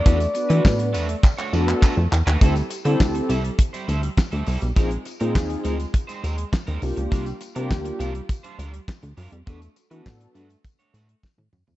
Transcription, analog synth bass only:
0.06 E2
0.50 E3
0.65 A2
0.94 E2
1.53 F2
1.97 F2
2.12 E2
2.27 D#2
2.41 D2
2.85 D3
3.00 D2
3.29 C2
3.88 D2
4.33 D2
4.47 C2
4.62 B1
4.76 A#1
5.21 A#2
5.35 D#2
5.65 D2
6.24 D#2
6.68 D#2
6.82 C2
6.97 C#2
7.12 C2
7.56 C3
7.71 D2
8.00 C2
8.59 D2
9.03 D2
9.18 F#2
9.32 F2
9.47 E2
9.91 E3
10.06 A2
10.35 G2
10.94 A2
11.38 A2
11.53 F#2
11.68 F2

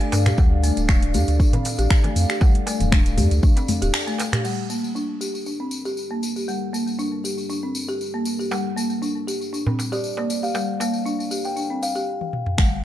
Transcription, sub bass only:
0.13 G2
0.38 D2
0.77 D1
1.15 F2
1.28 D2
1.40 A1
1.79 A1
2.16 F2
2.80 D1
3.18 F2
3.31 D2
3.82 D1
12.58 G1

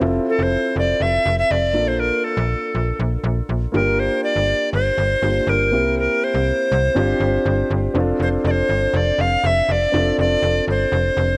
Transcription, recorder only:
0.29 A4
0.43 C5
0.79 D5
1.02 E5
1.39 E5
1.51 D5
1.88 C5
2.00 A#4
2.24 A4
3.75 A#4
3.99 C5
4.24 D5
4.74 C5
5.49 A#4
5.99 A#4
6.24 C5
8.23 C5
8.47 D5
8.51 C5
8.97 D5
9.21 F5
9.46 E5
9.72 D5
10.20 D5
10.70 C5

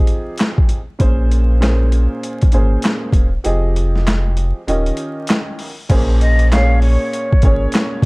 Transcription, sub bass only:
1.00 A#1
2.53 G#1
3.13 D#1
3.45 F1
4.68 D#1
5.90 A#1
7.43 G#1

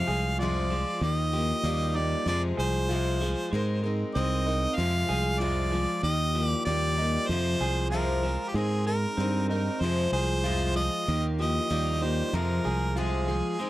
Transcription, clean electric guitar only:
Already playing: F3
0.08 G#4
0.39 F4
0.70 F3
1.02 D#3
1.33 F3
1.64 G3
1.95 D#4
2.27 F3
2.57 G#4
2.89 F4
3.21 F3
3.52 G#3
3.83 G#3
4.15 C4
4.46 D#4
4.77 F3
5.09 G#4
5.40 F4
5.72 F3
6.03 D#3
6.35 F3
6.66 G3
6.98 D#4
7.29 F3
7.61 G#4
7.92 F4
8.23 F3
8.55 G#3
8.86 G#3
9.17 C4
9.49 D#4
9.82 F3
10.13 G#4
10.44 F4
10.76 F3
11.08 D#3
11.40 F3
11.71 G3
12.02 D#4
12.34 F3
12.65 G#4
12.96 F4
13.28 F3
13.59 G#3

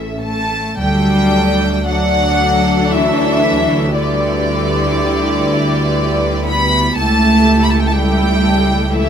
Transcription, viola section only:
Already playing: C#4 A4
0.79 F#3 D4
1.87 F#3 D4
3.94 G3 E4
6.98 A3 E4
7.95 A3 E4
8.92 A3 E4

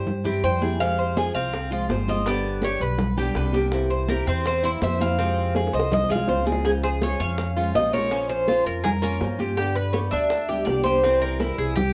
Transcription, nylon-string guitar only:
0.06 muted nylon-string guitar stroke
0.24 E3 G3 C4 E4
0.44 E3 G3 C4 E4
0.62 E3 G3 C4 E4
0.80 C3 F3 G#3 C4 F4
1.16 F3 G#3 C4 F4
1.53 muted nylon-string guitar stroke
1.71 F3 G#3 C4 F4
1.90 F3 G#3 C4 F4
2.08 F3 G#3 C4 F4
2.27 D3 G3 B3 D4 G4
2.63 G3 B3 D4 G4
2.99 muted nylon-string guitar stroke
3.17 G3 B3 D4 G4
3.35 G3 B3 D4 G4
3.53 G3 B3 D4 G4
3.72 C3 E3 A#3 C4 E4
4.08 E3 A#3 C4 E4
4.44 muted nylon-string guitar stroke
4.63 E3 A#3 C4 E4
4.81 E3 A#3 C4 E4
4.99 E3 A#3 C4 E4
5.18 C3 F3 G#3 C4 F4
5.55 F3 G#3 C4 F4
5.90 muted nylon-string guitar stroke
6.09 F3 G#3 C4 F4
6.29 F3 G#3 C4 F4
6.46 F3 G#3 C4 F4
6.65 C#3 F3 G#3 C#4 F4
7.01 F3 G#3 C#4 F4
7.38 muted nylon-string guitar stroke
7.56 F3 G#3 C#4 F4
7.75 F3 G#3 C#4 F4
7.93 F3 G#3 C#4 F4
8.11 F3 A#3 C#4 F4
8.48 F3 A#3 C#4 F4
8.85 muted nylon-string guitar stroke
9.02 A#3 C#4 F4
9.21 F3 A#3 C#4 F4
9.39 A#3 C#4 F4
9.58 D3 G3 B3 D4 G4
9.95 G3 B3 D4 G4
10.31 muted nylon-string guitar stroke
10.50 G3 B3 D4 G4
10.67 G3 B3 D4 G4
10.85 G3 B3 D4 G4
11.04 C3 E3 G3 C4 E4
11.40 E3 G3 C4 E4
11.77 muted nylon-string guitar stroke

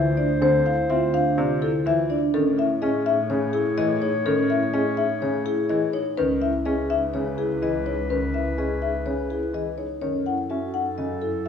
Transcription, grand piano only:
Already playing: E3
0.42 D3
0.90 C4
1.38 C3
1.86 E3
2.34 D#3
2.82 C#4
3.30 C#3
3.78 E3
4.26 D#3
4.74 C#4
5.22 C#3
5.70 E3
6.18 D#3
6.66 C#4
7.15 C#3
7.62 E3
8.10 D#3
8.58 C#4
9.06 C#3
9.53 E3
10.02 D#3
10.51 C#4
10.98 C#3

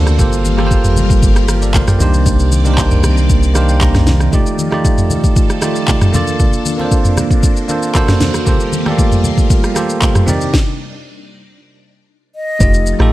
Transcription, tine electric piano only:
Already playing: A#3 D4 F#4 A4 C5
0.18 A#3 F4 G4 A4 C5
0.57 A#3 F4 G4 A4 A#4
0.67 C5
1.49 F4 A#4
1.62 A4 D5
1.75 C5 F5
1.88 D5 G5
1.99 A#3 D4 D#4 G4 C5
2.64 A#3 D4 D#4 G4 A#4
2.74 C5
3.54 A#3 D4 D#4 G4 C5 F5
3.69 G5
3.81 A#5
4.32 A3 D#4 F4 G4 D5
4.71 A3 D#4 F4 G4 D5
5.61 A3 D#4 F4 G4 D5
6.12 A#3 D4 F4 A4 D5
6.78 A#3 C4 F4 A4 C5
6.85 D4
7.68 A#3 D4 F4 A4 C5
7.94 A#3 D4 F#4 A4 C5
8.45 A#3 F4 G4 A4 C5
8.85 A3 F4 G4 A4 D5
8.91 A#3
9.75 A#3 F4 G4 A4 C5
10.26 C4 D#4 G4 A#4 D5
12.59 A3 D#4 F4 G4 D#5
12.99 A3 D#4 F4 G4 A4

